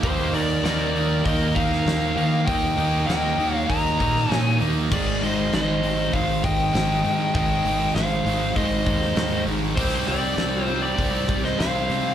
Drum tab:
CC |----------------|----------------|x---------------|----------------|
HH |o-o-o-o-o-o-o-o-|o-o-o-o-o-o-o-o-|--o-o-o-o-o-o-o-|o-o-o-o-o-o-o-o-|
SD |----o------oo---|----o------oo---|----o-------o---|----o------oo---|
BD |o-------o-o-----|o-------o-o-----|o-------o-o-----|o-------o-o-----|

CC |----------------|
HH |o-o-o-o-o-o-o-o-|
SD |----o------oo-o-|
BD |o-------o-o-----|